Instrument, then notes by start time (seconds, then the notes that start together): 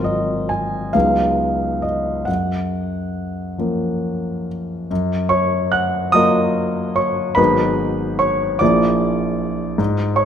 grand piano
Already playing: G#1 F#3 C4 F4 A#4
0.04 D#5
0.49 G#5
0.93 C#2 F#3 B3 D#4 G#4 F5
1.82 D#5
2.25 F#2 F#5
3.58 F3 A#3 C#4 A#4
4.91 F#2
5.29 C#5 C#6
5.72 F#5 F#6
6.12 F#3 A#3 F4 D#5 D#6
6.16 A#4
6.96 C#5 C#6
7.35 G#1 F#3 B3 D#4 G#4 B4 B5
8.19 C#5 C#6
8.59 A#1 F3 A#3 E4 G#4 D5 D6
9.78 G#2
10.16 C#5 C#6